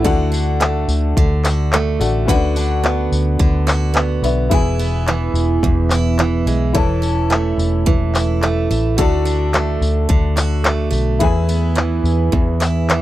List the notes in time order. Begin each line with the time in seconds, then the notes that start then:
Already playing: A3 C#4
0.02 D2 D3 D4 F#4 A4, kick
0.06 F#5
0.32 D4, tambourine
0.61 A3, clap
0.88 D2, tambourine
1.17 D2 D3, kick
1.45 F#4, clap, tambourine
1.73 A3, clap
1.99 A1 A3 D4 F#4 A4 F#5, tambourine
2.25 D2 D3 C#4 F#4 B4 F#5, kick
2.30 D4 F#4
2.56 D4, tambourine
2.84 B3, clap
3.12 D2, tambourine
3.39 D2 D3, kick
3.67 F#4, clap, tambourine
3.94 B3, clap
4.22 B1 B3 D4 F#4 B4 E5, tambourine
4.49 E1 E2 E4 G#4 B4, kick
4.53 G#5
4.79 B3, tambourine
5.07 E3, clap
5.34 E1, tambourine
5.63 E1 E2, kick
5.90 E4, clap, tambourine
6.19 E3, clap
6.46 B1 G#3, tambourine
6.73 E1 E3 E4 A4 C#5 A5, kick
7.02 C#4, tambourine
7.30 A3, clap
7.58 E1, tambourine
7.86 E1 E3, kick
8.15 E4, clap, tambourine
8.42 A3, clap
8.71 A1 A3, tambourine
8.97 D2 D3 F#4 A4 D5 A5, kick
9.25 D4, tambourine
9.54 A3, clap
9.81 D2, tambourine
10.09 D2 D3, kick
10.37 F#4, clap, tambourine
10.64 A3, clap
10.91 B1 A3, tambourine
11.19 E2 E4 G#4 B4, kick
11.23 G#5
11.49 B3, tambourine
11.75 E3, clap
12.04 E2, tambourine
12.32 E2, kick
12.60 E4, clap, tambourine
12.90 E3, clap